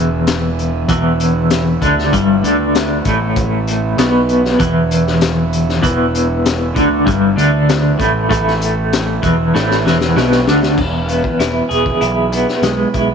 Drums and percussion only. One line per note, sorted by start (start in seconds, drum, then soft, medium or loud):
0.27 snare loud
0.27 closed hi-hat medium
0.59 closed hi-hat medium
0.89 kick medium
0.89 closed hi-hat medium
1.20 closed hi-hat medium
1.50 snare loud
1.50 closed hi-hat medium
1.82 kick medium
1.82 closed hi-hat medium
1.99 snare soft
2.13 kick medium
2.13 closed hi-hat medium
2.44 closed hi-hat medium
2.75 snare loud
2.75 closed hi-hat medium
3.05 kick loud
3.05 closed hi-hat medium
3.36 kick loud
3.36 closed hi-hat medium
3.67 closed hi-hat medium
3.98 snare loud
3.98 closed hi-hat medium
4.29 closed hi-hat medium
4.45 snare soft
4.60 kick medium
4.60 closed hi-hat medium
4.91 closed hi-hat medium
5.07 snare soft
5.21 snare loud
5.21 closed hi-hat medium
5.53 closed hi-hat medium
5.69 snare soft
5.83 kick medium
5.83 closed hi-hat medium
6.15 closed hi-hat medium
6.46 snare loud
6.46 closed hi-hat medium
6.76 kick loud
6.76 closed hi-hat medium
7.07 kick loud
7.07 closed hi-hat medium
7.38 closed hi-hat medium
7.69 snare loud
7.69 closed hi-hat medium
8.00 kick medium
8.00 closed hi-hat medium
8.31 kick loud
8.31 closed hi-hat medium
8.48 snare soft
8.62 closed hi-hat medium
8.93 snare loud
8.93 closed hi-hat medium
9.23 kick medium
9.23 closed hi-hat medium
9.55 snare medium
9.71 snare soft
9.87 snare medium
10.01 snare medium
10.17 snare medium
10.32 snare medium
10.48 snare medium
10.63 snare medium
10.78 kick loud
10.78 crash medium
11.09 closed hi-hat medium
11.24 kick medium
11.40 snare loud
11.40 closed hi-hat medium
11.71 closed hi-hat soft
11.86 kick medium
12.01 closed hi-hat medium
12.32 closed hi-hat medium
12.49 snare soft
12.63 snare medium
12.63 closed hi-hat medium
12.94 kick medium
12.94 closed hi-hat medium